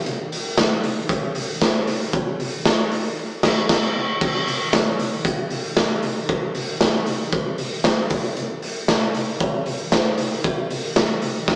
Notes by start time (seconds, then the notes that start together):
0.06 closed hi-hat
0.32 open hi-hat
0.58 kick, snare, closed hi-hat
0.83 open hi-hat
1.09 kick, closed hi-hat
1.35 open hi-hat
1.61 kick, snare, closed hi-hat
1.87 open hi-hat
2.13 kick, closed hi-hat
2.40 open hi-hat
2.65 kick, snare, closed hi-hat
2.91 open hi-hat
3.43 kick, snare, crash
3.69 kick, snare, crash
4.21 kick, crash
4.48 open hi-hat
4.73 kick, snare, closed hi-hat
4.99 open hi-hat
5.25 kick, closed hi-hat
5.50 open hi-hat
5.76 kick, snare, closed hi-hat
6.02 open hi-hat
6.29 kick, closed hi-hat
6.55 open hi-hat
6.81 kick, snare
7.06 open hi-hat
7.32 kick, closed hi-hat
7.58 open hi-hat
7.84 kick, snare, closed hi-hat
8.10 kick, open hi-hat
8.37 closed hi-hat
8.62 open hi-hat
8.88 kick, snare, closed hi-hat
9.14 open hi-hat
9.40 kick, closed hi-hat
9.66 open hi-hat
9.92 kick, snare, closed hi-hat
10.18 open hi-hat
10.44 kick, closed hi-hat
10.70 open hi-hat
10.96 kick, snare, closed hi-hat
11.22 open hi-hat
11.48 kick, snare